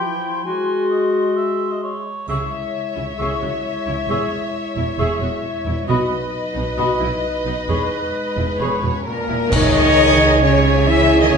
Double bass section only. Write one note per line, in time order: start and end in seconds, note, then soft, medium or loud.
2.28 2.36 C#2 soft
2.96 3.04 C#2 soft
3.19 3.27 C#2 soft
3.41 3.49 C#2 soft
3.86 3.94 C#2 soft
4.08 4.16 E1 soft
4.76 4.84 E1 soft
4.98 5.06 E1 medium
5.21 5.29 E1 soft
5.66 5.74 E1 soft
5.88 5.96 B1 medium
6.55 6.63 B1 soft
6.78 6.86 B1 medium
7.00 7.08 B1 soft
7.45 7.53 B1 soft
7.68 7.76 E1 soft
8.37 8.45 E1 soft
8.60 8.68 E1 soft
8.83 8.91 E1 soft
9.29 9.37 E1 soft
9.52 11.29 C#2 medium
11.32 11.37 E2 medium